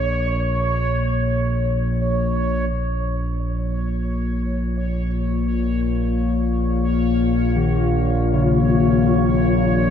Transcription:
0.00 2.70 A#1 medium
0.00 2.71 A#2 medium
0.00 2.69 C#5 medium
2.70 9.90 A#1 medium
2.70 9.90 A#2 medium
2.70 9.90 A#3 medium
2.70 9.90 C#5 medium
3.09 9.90 F4 medium
4.89 9.90 F5 medium
5.90 9.90 C#5 medium
7.56 8.54 D#3 medium
8.34 9.90 C#3 medium

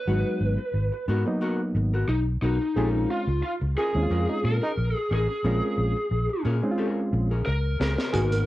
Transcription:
0.00 1.05 B4 medium
0.07 0.22 G#1 loud
0.07 0.57 F#3 medium
0.07 0.57 G#3 medium
0.07 0.39 B3 medium
0.07 0.58 B3 medium
0.07 0.58 D#4 medium
0.07 0.39 F#4 medium
0.40 0.55 G#1 medium
0.58 muted hollow-body jazz guitar stroke soft
0.74 0.89 G#1 medium
0.92 muted hollow-body jazz guitar stroke soft
1.08 1.23 G#2 medium
1.08 1.17 B3 medium
1.08 1.26 B3 medium
1.08 1.18 D#4 loud
1.08 1.25 F#4 medium
1.08 1.25 A#4 medium
1.26 1.91 F#3 medium
1.26 1.91 A#3 medium
1.26 1.92 B3 medium
1.26 1.92 D#4 medium
1.26 muted hollow-body jazz guitar stroke soft
1.41 1.59 B3 medium
1.41 1.60 F#4 medium
1.41 1.60 A#4 loud
1.74 2.03 G#1 medium
1.74 muted hollow-body jazz guitar stroke soft
1.93 2.07 B3 medium
1.93 2.06 F#4 medium
1.93 2.06 A#4 medium
2.08 2.36 B1 medium
2.08 2.18 D#4 medium
2.08 muted hollow-body jazz guitar stroke soft
2.42 2.57 B1 medium
2.42 2.57 B3 medium
2.42 3.10 D#4 medium
2.42 2.57 F#4 medium
2.42 2.58 A#4 medium
2.62 muted hollow-body jazz guitar stroke soft
2.76 3.04 A#1 medium
2.76 3.26 G#3 medium
2.76 3.26 C4 medium
2.76 2.89 C4 medium
2.76 3.26 C#4 medium
2.76 3.27 F4 medium
2.76 2.90 G4 medium
2.76 2.87 G#4 loud
2.76 2.91 A4 medium
2.89 3.08 C#4 medium
2.89 3.08 G#4 medium
2.89 3.08 A#4 medium
3.10 3.21 F4 loud
3.10 3.42 F4 medium
3.27 3.41 C#2 medium
3.27 muted hollow-body jazz guitar stroke soft
3.43 3.52 F4 medium
3.43 3.54 F4 medium
3.61 3.75 C#2 medium
3.61 muted hollow-body jazz guitar stroke soft
3.77 3.86 C#4 medium
3.77 3.95 C#4 medium
3.77 3.87 F4 medium
3.77 4.04 G#4 loud
3.77 4.45 G#4 loud
3.77 3.95 G#4 medium
3.77 3.94 A#4 medium
3.95 4.08 D#2 medium
3.95 4.60 G#3 medium
3.95 4.60 C4 medium
3.95 4.61 C#4 medium
3.95 4.02 E4 medium
3.95 muted hollow-body jazz guitar stroke medium
4.03 4.64 F4 medium
4.10 4.25 F2 medium
4.10 4.29 C#4 medium
4.10 4.25 F4 medium
4.10 4.29 G#4 medium
4.10 4.29 A#4 medium
4.29 4.38 D#4 medium
4.44 4.59 A#2 loud
4.44 4.97 A#4 loud
4.44 muted hollow-body jazz guitar stroke soft
4.62 4.75 C#4 medium
4.62 4.72 D#4 loud
4.62 4.75 G#4 medium
4.62 4.75 A#4 medium
4.77 4.92 A#1 medium
4.96 5.13 G#4 loud
4.96 muted hollow-body jazz guitar stroke soft
5.11 5.26 A1 medium
5.11 5.29 C#4 medium
5.11 5.28 G#4 medium
5.11 6.43 G#4 medium
5.11 5.26 A#4 medium
5.28 muted hollow-body jazz guitar stroke soft
5.44 5.59 A#1 loud
5.44 5.95 G#3 medium
5.44 5.95 C4 medium
5.44 5.76 C#4 medium
5.44 5.95 C#4 medium
5.44 5.96 F4 medium
5.44 5.76 G#4 medium
5.44 5.77 A#4 medium
5.78 5.93 A#1 medium
5.97 muted hollow-body jazz guitar stroke soft
6.11 6.26 A#1 medium
6.29 muted hollow-body jazz guitar stroke soft
6.45 6.60 A#2 loud
6.45 6.64 C#4 medium
6.45 6.54 C#4 medium
6.45 6.55 F4 medium
6.45 6.62 G#4 medium
6.45 6.62 A#4 medium
6.63 7.29 G#3 medium
6.63 7.29 C4 medium
6.63 7.29 C#4 medium
6.63 6.71 D#4 medium
6.63 muted hollow-body jazz guitar stroke soft
6.71 7.33 F4 loud
6.78 7.00 C#4 medium
6.78 7.00 G#4 medium
6.78 7.00 A#4 medium
7.13 7.41 A#1 medium
7.13 muted hollow-body jazz guitar stroke soft
7.31 7.44 C#4 medium
7.31 7.44 G#4 medium
7.31 7.44 A#4 medium
7.46 7.75 C#2 medium
7.46 7.78 A#4 medium
7.46 muted hollow-body jazz guitar stroke soft
7.80 7.95 C#2 medium
7.80 7.94 C#4 medium
7.80 7.95 G#4 medium
7.80 7.95 A#4 medium
7.80 8.46 A#4 medium
7.80 snare medium
7.97 muted hollow-body jazz guitar stroke medium
7.97 snare medium
8.13 8.42 G#1 loud
8.13 8.46 A#3 medium
8.13 8.44 B3 medium
8.13 8.46 B3 medium
8.13 8.46 D#4 medium
8.13 8.45 F#4 medium
8.13 8.46 F#4 medium
8.13 8.24 G#4 loud
8.13 8.45 A#4 medium
8.13 kick loud
8.13 closed hi-hat medium
8.32 closed hi-hat medium

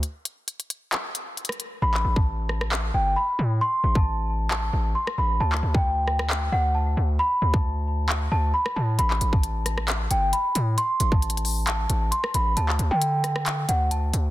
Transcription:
0.03 closed hi-hat medium
0.25 closed hi-hat medium
0.48 closed hi-hat medium
0.60 closed hi-hat soft
0.70 closed hi-hat medium
0.92 clap loud
0.92 closed hi-hat medium
1.15 closed hi-hat medium
1.37 closed hi-hat soft
1.45 closed hi-hat medium
1.49 cross-stick loud
1.49 closed hi-hat medium
1.60 closed hi-hat medium
1.82 2.04 A1 loud
1.82 2.14 B5 medium
1.94 clap medium
2.05 2.91 A1 loud
2.16 2.90 A5 medium
2.16 kick loud
2.49 cross-stick medium
2.61 cross-stick medium
2.72 clap loud
2.94 3.16 G1 loud
2.94 3.14 G5 medium
3.16 3.37 B5 medium
3.39 3.60 A2 loud
3.61 3.93 C6 loud
3.84 4.70 A1 loud
3.95 4.48 A5 medium
3.95 kick loud
4.51 4.93 A5 medium
4.51 clap loud
4.73 4.95 A1 loud
4.95 5.16 C6 medium
5.07 cross-stick medium
5.18 5.39 A1 loud
5.18 5.38 B5 medium
5.40 5.62 D2 loud
5.40 5.73 A5 loud
5.52 clap medium
5.63 6.49 D2 loud
5.75 6.48 G5 medium
5.75 kick loud
6.08 cross-stick medium
6.19 cross-stick medium
6.30 clap loud
6.52 6.95 D2 loud
6.52 6.73 F#5 medium
6.75 6.95 A5 medium
6.97 7.19 D2 loud
7.19 7.52 B5 loud
7.42 8.28 D2 loud
7.54 8.27 A5 medium
7.54 kick loud
8.09 clap loud
8.32 8.53 D2 loud
8.32 8.52 A5 medium
8.54 8.74 B5 medium
8.66 cross-stick medium
8.76 8.98 A2 loud
8.76 8.96 A5 medium
8.99 9.20 A1 loud
8.99 9.31 B5 medium
8.99 closed hi-hat medium
9.11 clap medium
9.21 10.07 A1 loud
9.21 closed hi-hat medium
9.33 10.06 A5 medium
9.33 kick loud
9.43 closed hi-hat medium
9.66 cross-stick medium
9.66 closed hi-hat medium
9.78 cross-stick medium
9.88 clap loud
9.88 closed hi-hat medium
10.11 10.32 G1 loud
10.11 10.31 G5 medium
10.11 closed hi-hat medium
10.33 10.53 B5 medium
10.33 closed hi-hat medium
10.55 10.77 A2 loud
10.55 closed hi-hat medium
10.78 11.10 C6 loud
10.78 closed hi-hat medium
11.00 11.86 A1 loud
11.00 closed hi-hat medium
11.12 11.64 A5 medium
11.12 kick loud
11.22 closed hi-hat medium
11.30 closed hi-hat medium
11.37 closed hi-hat medium
11.45 open hi-hat medium
11.67 12.09 A5 medium
11.67 clap loud
11.67 closed hi-hat medium
11.90 12.11 A1 loud
11.90 closed hi-hat medium
12.11 12.32 C6 medium
12.11 closed hi-hat medium
12.24 cross-stick medium
12.34 12.56 A1 loud
12.34 12.55 B5 medium
12.34 closed hi-hat medium
12.57 12.78 D2 loud
12.57 12.89 A5 medium
12.57 closed hi-hat medium
12.69 clap medium
12.79 12.91 D2 loud
12.79 closed hi-hat medium
12.91 13.66 D3 loud
12.91 13.65 G5 medium
13.02 closed hi-hat medium
13.24 cross-stick medium
13.24 closed hi-hat medium
13.36 cross-stick medium
13.46 clap loud
13.46 closed hi-hat medium
13.69 14.12 D2 loud
13.69 13.89 F#5 medium
13.69 closed hi-hat medium
13.91 14.11 A5 medium
13.91 closed hi-hat medium
14.13 14.30 D2 loud
14.13 closed hi-hat medium

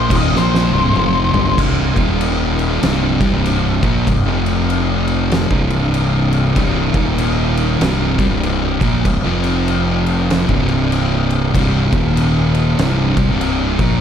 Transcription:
0.00 0.15 C5 loud
0.10 0.33 D#1 loud
0.10 0.33 D#2 loud
0.10 0.32 A#2 loud
0.10 0.34 D#3 loud
0.10 kick loud
0.10 crash loud
0.16 0.35 D#5 loud
0.33 0.69 A#1 medium
0.33 0.71 A#2 loud
0.33 0.71 F3 loud
0.33 0.71 A#3 loud
0.33 1.56 C5 loud
0.33 snare medium
0.55 snare medium
0.71 0.94 C1 loud
0.71 0.94 C2 loud
0.71 0.95 G2 loud
0.71 0.95 C3 loud
0.84 high tom medium
0.95 1.31 F1 loud
0.95 1.32 F2 loud
0.95 1.33 C3 loud
0.95 1.33 F3 loud
0.95 mid tom medium
1.33 1.56 G1 loud
1.33 1.57 G2 medium
1.33 1.58 D3 loud
1.33 1.58 G3 loud
1.33 floor tom loud
1.46 floor tom medium
1.57 1.94 C1 medium
1.57 1.95 C2 loud
1.57 1.95 G2 loud
1.57 1.95 C3 loud
1.57 kick loud
1.57 crash loud
1.57 crash medium
1.95 2.78 D#1 medium
1.95 2.81 D#2 medium
1.95 2.81 A#2 medium
1.95 2.82 D#3 loud
1.95 kick loud
1.95 crash medium
2.21 crash medium
2.59 crash medium
2.82 3.18 C1 medium
2.82 3.19 C2 medium
2.82 3.19 G2 medium
2.82 3.19 C3 loud
2.82 snare loud
2.82 crash medium
3.20 3.32 C2 medium
3.20 3.31 C3 medium
3.20 3.32 G3 medium
3.20 kick loud
3.20 crash medium
3.32 3.79 C1 medium
3.32 3.81 C2 medium
3.32 3.82 G2 medium
3.32 3.82 C3 medium
3.46 crash medium
3.83 4.05 A#1 medium
3.83 4.06 A#2 medium
3.83 4.07 F3 medium
3.83 4.07 A#3 loud
3.83 kick loud
3.83 crash medium
4.07 4.24 C1 medium
4.07 4.26 C2 medium
4.07 4.27 G2 medium
4.07 kick medium
4.07 crash medium
4.25 5.46 F1 medium
4.25 5.49 F2 medium
4.25 5.50 C3 loud
4.25 5.51 F3 loud
4.46 crash medium
4.70 crash medium
5.08 crash medium
5.32 snare loud
5.32 crash medium
5.51 6.52 C1 loud
5.51 6.55 C2 medium
5.51 6.56 G2 medium
5.51 6.56 C3 loud
5.51 kick loud
5.70 crash medium
5.94 crash medium
6.33 crash medium
6.56 6.91 C1 medium
6.56 6.93 C2 loud
6.56 6.93 G2 loud
6.56 6.94 C3 loud
6.56 kick loud
6.56 crash medium
6.94 7.76 D#1 medium
6.94 7.80 D#2 medium
6.94 7.80 A#2 loud
6.94 7.80 D#3 loud
6.94 kick loud
6.94 crash medium
7.18 crash medium
7.57 crash medium
7.80 8.16 C1 medium
7.80 8.17 C2 loud
7.80 8.18 G2 medium
7.80 8.17 C3 loud
7.80 snare loud
7.80 crash medium
8.18 8.30 C2 medium
8.18 8.30 C3 loud
8.18 8.30 G3 loud
8.18 kick loud
8.18 crash medium
8.31 8.77 C1 medium
8.31 8.80 C2 medium
8.31 8.80 G2 medium
8.31 8.80 C3 medium
8.43 crash medium
8.81 9.04 A#1 medium
8.81 9.04 A#2 medium
8.81 9.05 F3 loud
8.81 9.05 A#3 loud
8.81 kick loud
8.81 crash medium
9.05 9.23 C1 medium
9.05 9.24 C2 medium
9.05 9.24 G2 medium
9.05 kick medium
9.05 crash medium
9.24 10.45 F1 medium
9.24 10.48 F2 medium
9.24 10.48 C3 medium
9.24 10.48 F3 loud
9.44 crash medium
9.68 crash medium
10.06 crash medium
10.30 snare loud
10.30 crash medium
10.49 11.51 C1 medium
10.49 11.54 C2 medium
10.49 11.54 G2 medium
10.49 11.54 C3 loud
10.49 kick loud
10.68 crash medium
10.92 crash medium
11.30 crash medium
11.55 11.90 C1 medium
11.55 11.92 C2 loud
11.55 11.92 G2 loud
11.55 11.92 C3 loud
11.55 kick loud
11.55 crash medium
11.92 12.75 D#1 medium
11.92 12.78 D#2 medium
11.92 12.79 A#2 medium
11.92 12.79 D#3 loud
11.92 kick loud
11.92 crash medium
12.17 crash medium
12.55 crash medium
12.79 13.15 C1 medium
12.79 13.16 C2 medium
12.79 13.16 G2 medium
12.79 13.16 C3 loud
12.79 snare loud
12.79 crash medium
13.17 13.28 C2 medium
13.17 13.28 C3 loud
13.17 13.29 G3 loud
13.17 kick loud
13.17 crash medium
13.29 13.76 C1 medium
13.29 13.78 C2 medium
13.29 13.79 G2 medium
13.29 13.79 C3 medium
13.41 crash medium
13.79 14.01 A#1 loud
13.79 14.01 A#2 medium
13.79 14.01 F3 loud
13.79 14.01 A#3 loud
13.79 kick loud
13.79 crash medium

